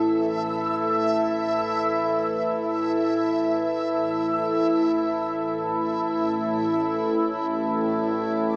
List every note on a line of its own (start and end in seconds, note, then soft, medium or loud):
0.00 8.56 A1 medium
0.00 8.56 A2 medium
0.00 8.56 E3 medium
0.00 8.56 E4 medium
0.00 8.56 A4 medium
0.00 7.55 E5 medium
7.55 8.56 D5 medium